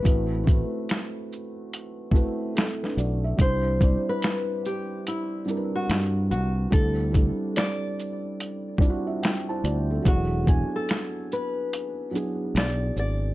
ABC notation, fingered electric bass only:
X:1
M:4/4
L:1/16
Q:"Swing 16ths" 1/4=72
K:Ador
V:1 name="Fingered electric bass" clef=bass
A,,,3 z8 z3 B,,,2 | C,,3 z8 z G,,2 C,,2 | D,,3 z8 z3 D,,2 | E,,,3 z8 z B,,,2 ^G,,,2 |]